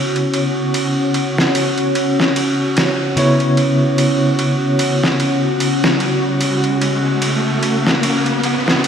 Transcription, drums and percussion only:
0, 0, Header, 1, 2, 480
1, 0, Start_track
1, 0, Key_signature, 4, "minor"
1, 0, Tempo, 810811
1, 1878, Time_signature, 4, 2, 24, 8
1, 5254, End_track
2, 0, Start_track
2, 0, Title_t, "Drums"
2, 93, Note_on_c, 9, 51, 38
2, 153, Note_off_c, 9, 51, 0
2, 198, Note_on_c, 9, 51, 60
2, 257, Note_off_c, 9, 51, 0
2, 439, Note_on_c, 9, 51, 73
2, 498, Note_off_c, 9, 51, 0
2, 677, Note_on_c, 9, 51, 56
2, 736, Note_off_c, 9, 51, 0
2, 820, Note_on_c, 9, 38, 37
2, 879, Note_off_c, 9, 38, 0
2, 917, Note_on_c, 9, 51, 77
2, 977, Note_off_c, 9, 51, 0
2, 1051, Note_on_c, 9, 51, 38
2, 1111, Note_off_c, 9, 51, 0
2, 1156, Note_on_c, 9, 51, 55
2, 1215, Note_off_c, 9, 51, 0
2, 1300, Note_on_c, 9, 38, 34
2, 1359, Note_off_c, 9, 38, 0
2, 1397, Note_on_c, 9, 51, 76
2, 1456, Note_off_c, 9, 51, 0
2, 1638, Note_on_c, 9, 51, 60
2, 1644, Note_on_c, 9, 38, 45
2, 1697, Note_off_c, 9, 51, 0
2, 1703, Note_off_c, 9, 38, 0
2, 1876, Note_on_c, 9, 51, 73
2, 1935, Note_off_c, 9, 51, 0
2, 2013, Note_on_c, 9, 51, 37
2, 2072, Note_off_c, 9, 51, 0
2, 2115, Note_on_c, 9, 51, 57
2, 2174, Note_off_c, 9, 51, 0
2, 2356, Note_on_c, 9, 51, 78
2, 2416, Note_off_c, 9, 51, 0
2, 2597, Note_on_c, 9, 51, 55
2, 2656, Note_off_c, 9, 51, 0
2, 2837, Note_on_c, 9, 51, 80
2, 2896, Note_off_c, 9, 51, 0
2, 2981, Note_on_c, 9, 38, 37
2, 3040, Note_off_c, 9, 38, 0
2, 3077, Note_on_c, 9, 51, 59
2, 3136, Note_off_c, 9, 51, 0
2, 3317, Note_on_c, 9, 51, 78
2, 3376, Note_off_c, 9, 51, 0
2, 3456, Note_on_c, 9, 38, 49
2, 3515, Note_off_c, 9, 38, 0
2, 3553, Note_on_c, 9, 51, 58
2, 3612, Note_off_c, 9, 51, 0
2, 3792, Note_on_c, 9, 51, 79
2, 3852, Note_off_c, 9, 51, 0
2, 3930, Note_on_c, 9, 51, 38
2, 3989, Note_off_c, 9, 51, 0
2, 4035, Note_on_c, 9, 51, 60
2, 4094, Note_off_c, 9, 51, 0
2, 4273, Note_on_c, 9, 51, 77
2, 4332, Note_off_c, 9, 51, 0
2, 4514, Note_on_c, 9, 51, 58
2, 4573, Note_off_c, 9, 51, 0
2, 4656, Note_on_c, 9, 38, 37
2, 4715, Note_off_c, 9, 38, 0
2, 4754, Note_on_c, 9, 51, 80
2, 4813, Note_off_c, 9, 51, 0
2, 4891, Note_on_c, 9, 51, 37
2, 4950, Note_off_c, 9, 51, 0
2, 4994, Note_on_c, 9, 51, 57
2, 5053, Note_off_c, 9, 51, 0
2, 5138, Note_on_c, 9, 38, 37
2, 5197, Note_off_c, 9, 38, 0
2, 5234, Note_on_c, 9, 51, 77
2, 5254, Note_off_c, 9, 51, 0
2, 5254, End_track
0, 0, End_of_file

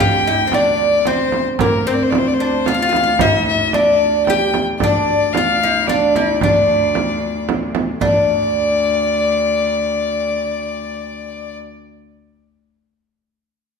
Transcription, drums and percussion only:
0, 0, Header, 1, 3, 480
1, 0, Start_track
1, 0, Tempo, 535236
1, 1433, Time_signature, 3, 2, 24, 8
1, 12367, End_track
2, 0, Start_track
2, 0, Title_t, "Darbuka"
2, 239, Note_on_c, 9, 62, 23
2, 329, Note_off_c, 9, 62, 0
2, 476, Note_on_c, 9, 63, 71
2, 566, Note_off_c, 9, 63, 0
2, 958, Note_on_c, 9, 63, 68
2, 1048, Note_off_c, 9, 63, 0
2, 1200, Note_on_c, 9, 63, 63
2, 1290, Note_off_c, 9, 63, 0
2, 1441, Note_on_c, 9, 64, 76
2, 1530, Note_off_c, 9, 64, 0
2, 1684, Note_on_c, 9, 62, 22
2, 1774, Note_off_c, 9, 62, 0
2, 1807, Note_on_c, 9, 62, 25
2, 1897, Note_off_c, 9, 62, 0
2, 1929, Note_on_c, 9, 63, 75
2, 2019, Note_off_c, 9, 63, 0
2, 2403, Note_on_c, 9, 63, 75
2, 2493, Note_off_c, 9, 63, 0
2, 2646, Note_on_c, 9, 63, 67
2, 2735, Note_off_c, 9, 63, 0
2, 2881, Note_on_c, 9, 64, 74
2, 2971, Note_off_c, 9, 64, 0
2, 3130, Note_on_c, 9, 62, 24
2, 3219, Note_off_c, 9, 62, 0
2, 3246, Note_on_c, 9, 62, 27
2, 3336, Note_off_c, 9, 62, 0
2, 3355, Note_on_c, 9, 63, 74
2, 3445, Note_off_c, 9, 63, 0
2, 3838, Note_on_c, 9, 63, 64
2, 3928, Note_off_c, 9, 63, 0
2, 4075, Note_on_c, 9, 63, 66
2, 4165, Note_off_c, 9, 63, 0
2, 4315, Note_on_c, 9, 64, 77
2, 4405, Note_off_c, 9, 64, 0
2, 4683, Note_on_c, 9, 62, 22
2, 4772, Note_off_c, 9, 62, 0
2, 4800, Note_on_c, 9, 63, 71
2, 4889, Note_off_c, 9, 63, 0
2, 5282, Note_on_c, 9, 63, 63
2, 5371, Note_off_c, 9, 63, 0
2, 5521, Note_on_c, 9, 63, 60
2, 5611, Note_off_c, 9, 63, 0
2, 5758, Note_on_c, 9, 64, 84
2, 5847, Note_off_c, 9, 64, 0
2, 5999, Note_on_c, 9, 62, 23
2, 6089, Note_off_c, 9, 62, 0
2, 6241, Note_on_c, 9, 63, 67
2, 6331, Note_off_c, 9, 63, 0
2, 6721, Note_on_c, 9, 63, 62
2, 6811, Note_off_c, 9, 63, 0
2, 6963, Note_on_c, 9, 63, 57
2, 7053, Note_off_c, 9, 63, 0
2, 7201, Note_on_c, 9, 64, 69
2, 7291, Note_off_c, 9, 64, 0
2, 12367, End_track
3, 0, Start_track
3, 0, Title_t, "Frame drum"
3, 465, Note_on_c, 9, 64, 61
3, 555, Note_off_c, 9, 64, 0
3, 946, Note_on_c, 9, 64, 59
3, 1035, Note_off_c, 9, 64, 0
3, 1187, Note_on_c, 9, 64, 58
3, 1276, Note_off_c, 9, 64, 0
3, 1425, Note_on_c, 9, 64, 87
3, 1515, Note_off_c, 9, 64, 0
3, 1905, Note_on_c, 9, 64, 64
3, 1995, Note_off_c, 9, 64, 0
3, 2388, Note_on_c, 9, 64, 67
3, 2478, Note_off_c, 9, 64, 0
3, 2625, Note_on_c, 9, 64, 60
3, 2714, Note_off_c, 9, 64, 0
3, 2862, Note_on_c, 9, 64, 95
3, 2952, Note_off_c, 9, 64, 0
3, 3347, Note_on_c, 9, 64, 62
3, 3437, Note_off_c, 9, 64, 0
3, 3832, Note_on_c, 9, 64, 65
3, 3921, Note_off_c, 9, 64, 0
3, 4070, Note_on_c, 9, 64, 59
3, 4159, Note_off_c, 9, 64, 0
3, 4306, Note_on_c, 9, 64, 75
3, 4396, Note_off_c, 9, 64, 0
3, 4795, Note_on_c, 9, 64, 63
3, 4884, Note_off_c, 9, 64, 0
3, 5272, Note_on_c, 9, 64, 66
3, 5362, Note_off_c, 9, 64, 0
3, 5521, Note_on_c, 9, 64, 65
3, 5610, Note_off_c, 9, 64, 0
3, 5751, Note_on_c, 9, 64, 83
3, 5841, Note_off_c, 9, 64, 0
3, 6234, Note_on_c, 9, 64, 62
3, 6324, Note_off_c, 9, 64, 0
3, 6714, Note_on_c, 9, 64, 75
3, 6804, Note_off_c, 9, 64, 0
3, 6948, Note_on_c, 9, 64, 68
3, 7037, Note_off_c, 9, 64, 0
3, 7184, Note_on_c, 9, 64, 69
3, 7274, Note_off_c, 9, 64, 0
3, 12367, End_track
0, 0, End_of_file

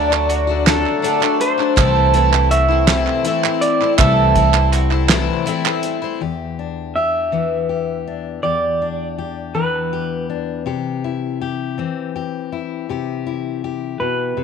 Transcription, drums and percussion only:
0, 0, Header, 1, 2, 480
1, 0, Start_track
1, 0, Key_signature, 1, "minor"
1, 0, Tempo, 741656
1, 1146, Time_signature, 6, 3, 24, 8
1, 9344, End_track
2, 0, Start_track
2, 0, Title_t, "Drums"
2, 83, Note_on_c, 9, 39, 68
2, 148, Note_off_c, 9, 39, 0
2, 192, Note_on_c, 9, 42, 58
2, 257, Note_off_c, 9, 42, 0
2, 434, Note_on_c, 9, 38, 91
2, 434, Note_on_c, 9, 39, 83
2, 434, Note_on_c, 9, 42, 69
2, 499, Note_off_c, 9, 38, 0
2, 499, Note_off_c, 9, 39, 0
2, 499, Note_off_c, 9, 42, 0
2, 557, Note_on_c, 9, 39, 27
2, 622, Note_off_c, 9, 39, 0
2, 675, Note_on_c, 9, 42, 59
2, 740, Note_off_c, 9, 42, 0
2, 795, Note_on_c, 9, 39, 61
2, 860, Note_off_c, 9, 39, 0
2, 911, Note_on_c, 9, 42, 57
2, 976, Note_off_c, 9, 42, 0
2, 1036, Note_on_c, 9, 39, 29
2, 1101, Note_off_c, 9, 39, 0
2, 1146, Note_on_c, 9, 36, 102
2, 1146, Note_on_c, 9, 42, 77
2, 1153, Note_on_c, 9, 39, 90
2, 1211, Note_off_c, 9, 36, 0
2, 1211, Note_off_c, 9, 42, 0
2, 1218, Note_off_c, 9, 39, 0
2, 1384, Note_on_c, 9, 42, 59
2, 1448, Note_off_c, 9, 42, 0
2, 1511, Note_on_c, 9, 39, 71
2, 1576, Note_off_c, 9, 39, 0
2, 1625, Note_on_c, 9, 42, 61
2, 1690, Note_off_c, 9, 42, 0
2, 1861, Note_on_c, 9, 38, 95
2, 1861, Note_on_c, 9, 42, 74
2, 1865, Note_on_c, 9, 39, 88
2, 1925, Note_off_c, 9, 38, 0
2, 1925, Note_off_c, 9, 42, 0
2, 1929, Note_off_c, 9, 39, 0
2, 1986, Note_on_c, 9, 39, 29
2, 2050, Note_off_c, 9, 39, 0
2, 2101, Note_on_c, 9, 42, 58
2, 2166, Note_off_c, 9, 42, 0
2, 2228, Note_on_c, 9, 39, 71
2, 2293, Note_off_c, 9, 39, 0
2, 2341, Note_on_c, 9, 42, 59
2, 2406, Note_off_c, 9, 42, 0
2, 2469, Note_on_c, 9, 39, 28
2, 2534, Note_off_c, 9, 39, 0
2, 2578, Note_on_c, 9, 42, 81
2, 2580, Note_on_c, 9, 36, 101
2, 2581, Note_on_c, 9, 39, 96
2, 2643, Note_off_c, 9, 42, 0
2, 2645, Note_off_c, 9, 36, 0
2, 2646, Note_off_c, 9, 39, 0
2, 2819, Note_on_c, 9, 36, 69
2, 2819, Note_on_c, 9, 42, 58
2, 2884, Note_off_c, 9, 36, 0
2, 2884, Note_off_c, 9, 42, 0
2, 2938, Note_on_c, 9, 39, 78
2, 3003, Note_off_c, 9, 39, 0
2, 3060, Note_on_c, 9, 42, 58
2, 3063, Note_on_c, 9, 39, 30
2, 3125, Note_off_c, 9, 42, 0
2, 3128, Note_off_c, 9, 39, 0
2, 3178, Note_on_c, 9, 39, 30
2, 3243, Note_off_c, 9, 39, 0
2, 3295, Note_on_c, 9, 39, 89
2, 3297, Note_on_c, 9, 38, 100
2, 3297, Note_on_c, 9, 42, 65
2, 3360, Note_off_c, 9, 39, 0
2, 3362, Note_off_c, 9, 38, 0
2, 3362, Note_off_c, 9, 42, 0
2, 3539, Note_on_c, 9, 42, 58
2, 3604, Note_off_c, 9, 42, 0
2, 3661, Note_on_c, 9, 39, 71
2, 3725, Note_off_c, 9, 39, 0
2, 3772, Note_on_c, 9, 42, 50
2, 3837, Note_off_c, 9, 42, 0
2, 9344, End_track
0, 0, End_of_file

